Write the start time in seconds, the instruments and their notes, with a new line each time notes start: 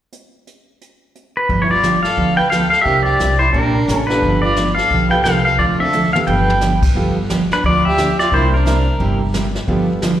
0.12 closed hi-hat
0.47 closed hi-hat
0.81 closed hi-hat
1.15 closed hi-hat
1.37 pedal steel guitar B4
1.49 upright bass G1, steel-string acoustic guitar D3 F3 B3 D4 G4, brush sweep, kick
1.62 fiddle E4, pedal steel guitar C#5
1.70 fiddle F4, pedal steel guitar D5
1.83 steel-string acoustic guitar D3 F3 B3 D4 G4, snare, hi-hat pedal
2.03 fiddle A4, pedal steel guitar F5, snare
2.17 upright bass D2, steel-string acoustic guitar D3 F3 B3 D4 G4, brush sweep, kick
2.37 fiddle B4, pedal steel guitar G5
2.50 steel-string acoustic guitar D3 F3 B3 D4 G4, fiddle A4, pedal steel guitar F5, snare, hi-hat pedal
2.70 fiddle A4, pedal steel guitar F5, snare
2.81 upright piano C4, fiddle G4, pedal steel guitar E5
2.86 upright bass C2, steel-string acoustic guitar C3 G3 A#3 E4 G4, upright piano D4 E4 A#4, brush sweep, kick
3.03 fiddle G4, pedal steel guitar D5
3.19 upright bass C2, steel-string acoustic guitar C3 G3 A#3 E4 G4, snare, hi-hat pedal
3.38 fiddle E4, pedal steel guitar C5
3.52 upright bass A#1, steel-string acoustic guitar C3 G3 A#3 E4 G4, fiddle D4, pedal steel guitar A#4, brush sweep, kick
3.88 upright bass A1, steel-string acoustic guitar C3 G3 A#3 E4 G4, fiddle C#4, snare, hi-hat pedal
3.95 pedal steel guitar A4
4.07 upright piano B3 F4 G4 A4, fiddle D4, pedal steel guitar B4, snare
4.22 upright bass G1, steel-string acoustic guitar D3 F3 B3 D4 G4, brush sweep, kick
4.42 fiddle F4, pedal steel guitar D5
4.56 steel-string acoustic guitar D3 F3 B3 D4 G4, snare, hi-hat pedal
4.75 fiddle A4, pedal steel guitar F5, snare
4.91 upright bass B1, steel-string acoustic guitar D3 F3 B3 D4 G4, brush sweep, kick
5.09 upright piano B3 F4 G4 A4, fiddle B4, pedal steel guitar G5
5.23 upright bass C2, steel-string acoustic guitar D3 F3 B3 D4 G4, fiddle A4, pedal steel guitar F5, snare, hi-hat pedal
5.45 fiddle A4, pedal steel guitar F5
5.59 upright bass D2, steel-string acoustic guitar D3 F3 C4 D4 A4, fiddle F4, pedal steel guitar D5, brush sweep, kick
5.79 upright piano C4 D4 F4 A4, fiddle A4, pedal steel guitar E5
5.93 steel-string acoustic guitar D3 F3 C4 D4 A4, hi-hat pedal, high tom
6.13 upright piano B3 F4 G4 A4, fiddle A4, pedal steel guitar F5, mid tom
6.27 upright bass G1, steel-string acoustic guitar D3 F3 B3 D4 G4, fiddle B4, pedal steel guitar G5, floor tom
6.50 floor tom
6.61 steel-string acoustic guitar D3 F3 B3 D4 G4, snare, hi-hat pedal
6.82 kick, crash
6.95 upright bass G1, steel-string acoustic guitar D3 F3 B3 D4 G4, upright piano B3 F4 G4 A4, brush sweep, kick
7.29 steel-string acoustic guitar D3 F3 B3 D4 G4, snare, hi-hat pedal
7.51 fiddle D4, pedal steel guitar B4, snare
7.64 upright bass D2, steel-string acoustic guitar D3 F3 B3 D4 G4, fiddle F4, pedal steel guitar D5, brush sweep, kick
7.85 fiddle G4, pedal steel guitar E5
7.98 steel-string acoustic guitar D3 F3 B3 D4 G4, snare, hi-hat pedal
8.19 fiddle F4, pedal steel guitar D5, snare
8.31 upright bass C2, steel-string acoustic guitar C3 G3 A#3 E4 G4, upright piano C4 D4 E4 A#4, fiddle E4, pedal steel guitar C5, brush sweep, kick
8.54 fiddle D4, pedal steel guitar A#4
8.65 steel-string acoustic guitar C3 G3 A#3 E4 G4, upright piano C4 D4 E4 A#4, snare, hi-hat pedal
9.00 upright bass G1, steel-string acoustic guitar C3 G3 A#3 E4 G4, brush sweep, kick
9.34 steel-string acoustic guitar C3 G3 A#3 E4 G4, snare, hi-hat pedal
9.55 snare
9.67 upright bass G1, steel-string acoustic guitar D3 F3 B3 D4 G4, upright piano B3 F4 G4 A4, brush sweep, kick
10.02 steel-string acoustic guitar D3 F3 B3 D4 G4, snare, hi-hat pedal